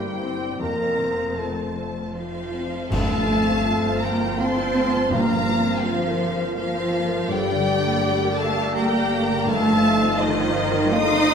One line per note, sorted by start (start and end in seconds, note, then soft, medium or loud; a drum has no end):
0.00 0.56 G1 medium
0.00 0.56 G2 medium
0.00 0.57 G2 medium
0.00 0.63 G2 medium
0.00 0.59 G3 medium
0.00 0.62 G3 soft
0.00 0.63 G3 soft
0.00 0.23 A#3 medium
0.00 1.37 C4 soft
0.00 0.21 E4 medium
0.00 0.63 E4 medium
0.00 0.61 G4 medium
0.00 0.62 C5 medium
0.00 2.14 C5 medium
0.00 0.60 G5 medium
0.00 0.61 G5 medium
0.22 0.60 C4 soft
0.22 0.59 C4 medium
0.22 0.63 E4 soft
0.60 2.67 F1 medium
0.60 2.94 F2 medium
0.60 2.87 F2 soft
0.60 2.12 F2 medium
0.60 1.36 A#3 medium
0.60 2.50 C4 medium
0.60 1.40 A#4 medium
0.60 1.35 A#5 medium
0.98 1.59 C3 soft
0.98 2.94 C3 soft
1.35 2.14 A3 medium
1.35 3.08 C4 soft
1.35 2.00 F4 soft
1.35 2.15 A5 medium
1.39 2.16 A4 medium
1.76 2.53 F4 soft
1.76 2.38 C5 soft
2.13 2.86 F3 medium
2.13 2.88 F3 medium
2.13 2.76 F4 soft
2.13 2.92 F4 medium
2.13 3.46 C5 soft
2.13 2.88 C5 medium
2.13 2.87 F5 medium
2.54 2.91 C4 soft
2.54 3.27 F4 soft
2.89 7.26 G1 medium
2.89 3.98 G2 medium
2.89 5.10 G2 medium
2.89 5.07 G2 medium
2.89 3.09 D#3 medium
2.89 4.01 A3 medium
2.89 4.03 A3 medium
2.89 7.26 F4 medium
2.89 4.03 A4 medium
2.89 4.02 F5 medium
2.89 3.99 A5 loud
2.89 concert bass drum medium
2.89 crash medium
3.09 3.28 F3 medium
3.09 4.74 C4 medium
3.17 3.56 F3 soft
3.27 3.46 A3 medium
3.27 3.64 F4 medium
3.40 3.80 C4 medium
3.46 3.65 C4 medium
3.46 4.37 C5 medium
3.64 3.84 A3 medium
3.64 4.04 F4 medium
3.64 4.56 F4 medium
3.83 4.02 F3 medium
3.83 4.27 C5 medium
3.83 4.18 F5 medium
4.00 4.21 D#3 medium
4.00 4.37 A#3 medium
4.00 4.39 A#3 medium
4.00 4.37 A#4 medium
4.00 4.38 A#5 medium
4.00 7.33 C6 medium
4.04 4.40 G5 medium
4.14 4.53 F4 medium
4.20 4.39 F3 medium
4.20 6.01 F5 medium
4.38 4.57 A3 medium
4.38 5.11 C4 medium
4.38 5.09 C5 medium
4.38 5.82 C5 medium
4.38 4.77 F5 medium
4.38 5.11 C6 medium
4.42 5.13 A5 medium
4.57 4.75 C4 medium
4.57 5.46 F4 medium
4.57 5.00 C5 medium
4.75 4.93 A3 medium
4.75 5.28 C4 medium
4.85 5.10 F4 medium
4.93 7.10 F3 medium
4.93 5.11 F3 medium
5.09 7.25 G2 medium
5.09 6.16 G2 medium
5.09 7.29 G2 medium
5.09 5.28 C3 medium
5.09 5.82 A#3 medium
5.09 5.85 A#4 loud
5.09 5.84 A#5 loud
5.13 5.83 F5 medium
5.29 5.48 F3 medium
5.29 5.73 F3 medium
5.29 6.92 C4 medium
5.47 5.65 A#3 medium
5.47 6.74 F4 medium
5.59 5.98 C4 soft
5.65 5.83 C4 medium
5.82 6.55 F3 medium
5.82 6.39 F3 medium
5.82 6.01 A#3 medium
5.82 6.56 F4 medium
5.82 6.23 F4 medium
5.82 7.33 C5 medium
5.82 6.57 C5 medium
5.82 6.54 F5 medium
6.02 6.20 F3 medium
6.02 6.37 F5 medium
6.07 6.47 A#4 medium
6.20 6.38 C3 medium
6.32 6.71 C5 medium
6.38 6.57 F3 medium
6.38 7.33 F5 medium
6.55 7.28 F3 medium
6.55 6.75 A#3 medium
6.55 7.30 F4 medium
6.55 7.29 C5 medium
6.55 7.28 F5 loud
6.55 6.95 F5 medium
6.75 6.93 C4 medium
6.75 7.33 F4 medium
6.80 7.20 C5 medium
6.93 7.12 A#3 medium
6.93 7.33 C4 medium
7.05 7.30 A#4 medium
7.12 7.33 F3 medium
7.12 7.30 F3 medium
7.28 11.34 G1 medium
7.28 9.42 G2 medium
7.28 9.46 G2 medium
7.28 7.47 D3 medium
7.28 8.39 G3 loud
7.28 8.39 G3 medium
7.28 8.40 G4 medium
7.28 9.44 G4 medium
7.28 8.40 D5 medium
7.28 8.39 G5 loud
7.49 7.92 D3 medium
7.49 7.66 G3 medium
7.49 9.11 D4 medium
7.66 7.85 A3 medium
7.66 8.92 G4 soft
7.78 8.17 D4 medium
7.86 8.03 A#3 medium
8.01 8.22 A3 medium
8.01 8.41 G4 medium
8.01 9.49 D5 medium
8.20 8.40 G3 medium
8.20 8.64 A#4 medium
8.20 8.56 G5 medium
8.36 8.58 D3 medium
8.36 8.75 A3 medium
8.36 8.76 A3 medium
8.36 8.76 A4 medium
8.36 8.74 A5 loud
8.36 9.50 D6 medium
8.41 8.76 F5 medium
8.49 8.89 D5 medium
8.57 8.76 G3 medium
8.57 9.50 G5 medium
8.73 9.47 A#3 loud
8.73 9.48 A#3 loud
8.73 9.22 A#4 medium
8.73 9.50 A#4 medium
8.73 9.13 G5 medium
8.73 9.47 G5 loud
8.73 9.45 A#5 medium
8.78 8.95 A3 medium
8.94 9.13 A#3 medium
8.94 9.50 G4 medium
8.98 9.37 D5 medium
9.12 9.31 A3 medium
9.12 9.50 D4 medium
9.23 9.47 A#4 medium
9.30 9.50 D3 medium
9.30 9.48 G3 medium
9.45 11.34 G2 medium
9.45 10.19 A3 medium
9.45 10.19 A3 loud
9.45 10.22 A4 loud
9.45 10.20 F5 medium
9.45 10.19 A5 loud
9.50 9.65 D#3 medium
9.50 11.34 F4 medium
9.65 9.84 F3 medium
9.65 10.08 F3 medium
9.65 11.28 D#4 medium
9.83 10.02 A3 medium
9.83 11.10 F4 medium
9.93 10.33 D#4 medium
10.02 10.21 C4 medium
10.02 10.92 C5 medium
10.17 10.94 D#3 loud
10.17 10.94 D#4 loud
10.17 10.59 F4 medium
10.17 10.94 C5 medium
10.17 10.93 D#5 loud
10.17 11.34 D#5 medium
10.23 10.40 A3 medium
10.38 10.59 F3 medium
10.38 10.75 F5 medium
10.43 10.84 C5 medium
10.57 10.78 D#3 medium
10.57 11.34 C6 medium
10.68 11.08 D#5 medium
10.76 11.34 F5 medium
10.80 10.96 F3 medium
10.92 11.34 D#4 loud
10.92 11.34 C5 medium
10.92 11.34 D#5 loud
10.92 11.32 F5 medium
10.92 11.34 C6 loud
10.92 11.34 D#6 loud
10.97 11.14 A3 medium
11.11 11.34 F4 medium
11.16 11.32 C4 medium
11.16 11.34 D#5 medium